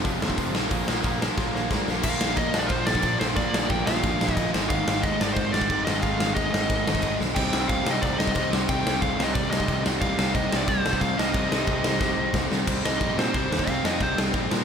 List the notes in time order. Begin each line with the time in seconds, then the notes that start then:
Already playing: F2 C3 F3 G#3 C4
0.05 F1 F2 C3 F3, kick, open hi-hat
0.22 D#2 F2 C3 F3, snare
0.30 kick
0.38 F1 F2 C3 F3, kick, open hi-hat
0.54 A#1 A#2 F3 A#3 D4, snare
0.71 A#1 A#2 F3 A#3, kick, open hi-hat
0.88 A#1 A#2 F3 A#3, snare
1.03 A#1 A#2 F3 A#3, kick, open hi-hat
1.22 A#2 F3 A#3, snare
1.38 A#1 A#2 F3 A#3, kick, snare
1.55 A#1 A#2 F3 A#3, snare
1.70 G#2 A#2 F3 A#3 D4, kick, snare
1.88 A#1 A#2 F3 A#3, snare
2.03 A#1 A#2 D3 F3 A#3 D4 F5, kick, crash
2.08 A#3
2.21 A#1, snare
2.37 A#1 D#5, kick, crash
2.53 A#1 A#2 D3 F3 A#3 D4, snare
2.59 D5
2.66 A#4 C5, crash
2.70 A#1, kick
2.86 A#1 D5, snare
2.95 kick
3.02 A#1, kick, crash
3.20 A#1 A#2 F3 A#3 C5, snare
3.35 A#1 A#2 D3 F3 A#3 D4 D5, kick, crash
3.40 A#3
3.53 A#1, snare
3.69 A#1 G5, kick, crash
3.85 A#1 A#2 D3 F3 A#3 D4 F5, snare
4.04 A#1, kick, crash
4.21 A#1, snare
4.29 kick
4.34 A#1 D#5, kick, crash
4.52 G#1 G#2 D#3 G#3 C4 D#4, snare
4.57 G#3
4.69 G#1 F5, kick, crash
4.88 G#1, snare
5.02 G#1 G#2 D#3 G#3 C4 D#4 D#5, kick, crash
5.21 G#1 D5, snare
5.33 G#1 C5, kick, crash
5.52 G#1 D5, snare
5.61 kick
5.70 G#1 G#2 D#3 G#3, kick, crash
5.85 G#1 G#2 D#3 G#3 C4 D#4 D#5, snare
5.90 G#3
6.02 G#1 F5, kick, crash
6.20 G#1, snare
6.35 G#1 G#2 D#3 G#3 C4 D#4 D#5, kick, crash
6.52 G#1 D#5, snare
6.70 G#1, kick, crash
6.88 G#1, snare
6.95 kick
7.02 G#1 G#2 D#3, kick, crash
7.07 G#3
7.21 B1, snare
7.35 C2 C3 G3 C4 D#4 G5, kick, crash
7.39 C4
7.53 C2, snare
7.68 C2 F5, kick, crash
7.86 C2 C3 G3 C4 D#4, snare
7.91 D#5
8.02 C2 D5, kick, crash
8.19 C2 D#5, snare
8.27 kick
8.35 C2, kick, crash
8.52 C2 G3 C4, snare
8.56 C3
8.69 C2 C3 G3 C4 D#4 G5, kick, crash
8.86 C2, snare
9.01 C2 F5, kick, crash
9.19 C2 C3 G3 C4 D#4, snare
9.24 D#5
9.34 C2 D5, kick, crash
9.51 C2 D#5, snare
9.60 kick
9.68 C2, kick, crash
9.84 C2 G3 C4, snare
9.88 C3
10.01 C2 C3 G3 C4 D#4 F5, kick, crash
10.19 C2, snare
10.35 C2 D#5, kick, crash
10.51 C2 C3 G3 C4 D#4, snare
10.57 D5
10.68 C2 C5, kick, crash
10.86 C2, snare
10.93 kick
11.01 C2 F5, kick, crash
11.17 C2 C3 G3 C4 D#5, snare
11.34 C2 C3 G3 C4 D#4, kick, crash
11.38 C4
11.52 C2, snare
11.67 C2, kick, crash
11.84 C2 C3 G3 C4 D#4, snare
12.01 C2, kick, snare
12.19 C2
12.34 C2, kick, snare
12.50 C2 C3 G3 C4, snare
12.67 C2 C3 G3 C4 D#4, kick, crash
12.84 C2 C3 G3 C4 D#5, snare
13.01 A#1 C3 G3 C4, kick, crash
13.16 A#2 C3 G3 C4 C5, snare
13.34 C2 C3 G3 C4 D#4, kick, crash
13.51 D#2 C3 G3 C4, snare
13.59 kick
13.67 C2 C3 G3 C4 F5, kick, crash
13.84 F2 C3 G3 C4 D#5, snare
14.01 C2 C3 G3 C4 D#4 C5, kick, crash
14.18 C2 C3 G3 C4, snare
14.34 A#1 C3 G3 C4, kick, crash
14.51 A#2 C3 G3 C4, snare